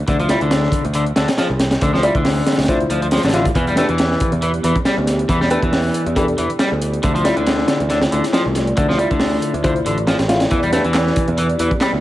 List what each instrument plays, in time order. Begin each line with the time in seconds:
0.08 picked electric bass D2, clean electric guitar D3, kick, closed hi-hat
0.20 clean electric guitar F3, closed hi-hat
0.29 clean electric guitar G3, grand piano E4 F4 D5, snare, closed hi-hat
0.41 picked electric bass D2, clean electric guitar D3, closed hi-hat
0.51 snare, closed hi-hat
0.63 snare
0.72 kick, closed hi-hat
0.85 picked electric bass D2, closed hi-hat
0.94 clean electric guitar D3, closed hi-hat
1.06 closed hi-hat
1.16 picked electric bass D2, clean electric guitar D3, snare, closed hi-hat
1.28 snare, closed hi-hat
1.38 clean electric guitar F3, snare, closed hi-hat
1.50 picked electric bass C2
1.60 snare, closed hi-hat
1.71 snare, closed hi-hat
1.81 picked electric bass D2, clean electric guitar D3, kick, closed hi-hat
1.94 clean electric guitar F3, snare
2.03 clean electric guitar G3, grand piano E4 F4 D5, closed hi-hat
2.15 picked electric bass D2, clean electric guitar D3, kick, closed hi-hat
2.25 snare, closed hi-hat, open hi-hat
2.47 snare, closed hi-hat
2.52 snare, closed hi-hat
2.58 picked electric bass D2, snare, closed hi-hat
2.63 snare, closed hi-hat
2.68 clean electric guitar D3, grand piano E4 F4 C5, kick, closed hi-hat
2.80 closed hi-hat
2.90 picked electric bass D2, clean electric guitar F3, closed hi-hat
3.02 clean electric guitar F3, closed hi-hat
3.11 clean electric guitar F3, snare, closed hi-hat
3.17 snare, closed hi-hat
3.23 picked electric bass A1, clean electric guitar D3, snare, closed hi-hat
3.29 snare, closed hi-hat
3.33 clean electric guitar D3, grand piano E4 F4 F5, snare, closed hi-hat
3.45 kick, closed hi-hat
3.55 picked electric bass E2, clean electric guitar E3, analog synth pad B3 E4 G4 D5, kick, closed hi-hat
3.67 clean electric guitar G3, closed hi-hat
3.76 clean electric guitar A3, grand piano D4 G4 B4, snare, closed hi-hat
3.89 picked electric bass E2, clean electric guitar E3, closed hi-hat
3.98 snare, closed hi-hat
4.11 snare
4.20 kick, closed hi-hat
4.32 picked electric bass E2, closed hi-hat
4.42 clean electric guitar E3, closed hi-hat
4.54 closed hi-hat
4.64 picked electric bass E2, clean electric guitar E3, closed hi-hat
4.76 kick, closed hi-hat
4.85 clean electric guitar G3, snare, closed hi-hat
4.98 picked electric bass D2
5.07 snare, closed hi-hat
5.19 closed hi-hat
5.29 picked electric bass E2, clean electric guitar E3, kick, closed hi-hat
5.41 clean electric guitar G3, snare
5.50 clean electric guitar A3, grand piano D4 G4 B4, closed hi-hat
5.62 picked electric bass E2, clean electric guitar E3, kick, closed hi-hat
5.73 snare, closed hi-hat, open hi-hat
5.94 closed hi-hat
6.06 picked electric bass E2, closed hi-hat
6.16 clean electric guitar E3, grand piano D4 G4 A4, kick, closed hi-hat
6.28 closed hi-hat
6.38 picked electric bass E2, clean electric guitar E3, closed hi-hat
6.50 closed hi-hat
6.59 clean electric guitar G3, snare, closed hi-hat
6.72 picked electric bass D2
6.82 closed hi-hat
6.94 closed hi-hat
7.03 picked electric bass D2, clean electric guitar D3, analog synth pad A3 F4, kick, closed hi-hat
7.15 clean electric guitar F3, closed hi-hat
7.25 clean electric guitar G3, grand piano E4 F4 D5, snare, closed hi-hat
7.36 picked electric bass D2, clean electric guitar D3, closed hi-hat
7.46 snare, closed hi-hat
7.58 snare
7.68 snare, closed hi-hat
7.80 picked electric bass D2, closed hi-hat
7.90 clean electric guitar D3, snare, closed hi-hat
8.01 snare, closed hi-hat
8.12 picked electric bass D2, clean electric guitar D3, closed hi-hat
8.24 snare, closed hi-hat
8.33 clean electric guitar F3, snare, closed hi-hat
8.46 picked electric bass C2
8.55 snare, closed hi-hat
8.67 closed hi-hat
8.77 picked electric bass D2, clean electric guitar D3, kick, closed hi-hat
8.89 clean electric guitar F3, snare
8.98 clean electric guitar G3, grand piano E4 F4 D5, closed hi-hat
9.11 picked electric bass D2, clean electric guitar D3, kick, closed hi-hat
9.20 snare, closed hi-hat, open hi-hat
9.42 closed hi-hat
9.54 picked electric bass D2, closed hi-hat
9.64 clean electric guitar D3, grand piano E4 F4 C5, kick, closed hi-hat
9.76 closed hi-hat
9.86 picked electric bass A1, clean electric guitar D3, closed hi-hat
9.98 closed hi-hat
10.07 clean electric guitar F3, snare, closed hi-hat
10.19 picked electric bass A1, snare, closed hi-hat
10.29 grand piano E4 F4 F5, snare, closed hi-hat
10.40 snare, closed hi-hat
10.51 picked electric bass E2, clean electric guitar E3, analog synth pad B3 G4, kick, closed hi-hat
10.63 clean electric guitar G3, closed hi-hat
10.72 clean electric guitar A3, grand piano D4 G4 B4, snare, closed hi-hat
10.84 picked electric bass E2, clean electric guitar E3, closed hi-hat
10.94 snare, clap, closed hi-hat
11.07 snare
11.16 kick, closed hi-hat
11.28 picked electric bass E2, closed hi-hat
11.38 clean electric guitar E3, closed hi-hat
11.49 closed hi-hat
11.59 picked electric bass E2, clean electric guitar E3, closed hi-hat
11.71 kick, closed hi-hat
11.81 clean electric guitar G3, snare, clap, closed hi-hat
11.93 picked electric bass D2